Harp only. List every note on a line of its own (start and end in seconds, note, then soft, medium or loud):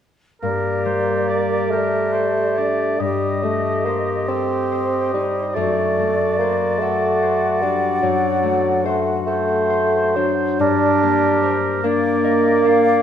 0.43 2.99 G2 soft
0.85 4.75 G3 soft
1.30 2.13 D5 soft
1.73 5.60 G4 soft
2.14 3.03 D5 soft
2.58 3.03 D4 soft
3.00 5.59 G2 soft
3.43 5.98 A3 soft
3.86 4.71 C5 soft
4.29 6.81 A4 soft
4.72 6.40 C5 soft
5.15 5.60 D#4 soft
5.56 8.02 F#2 soft
5.99 8.42 A3 soft
6.41 7.21 C5 soft
6.82 9.26 A4 soft
7.23 8.84 C5 soft
7.62 10.15 D4 soft
8.03 10.64 F#2 soft
8.43 10.64 A3 soft
8.86 9.69 C5 soft
9.27 10.64 A4 soft
9.70 10.64 C5 soft
10.16 11.83 D4 soft
10.59 13.02 G2 soft
11.03 13.02 A#3 soft
11.44 12.23 A#4 soft
11.84 12.63 D4 soft
12.24 13.02 A#4 soft
12.65 13.02 D4 soft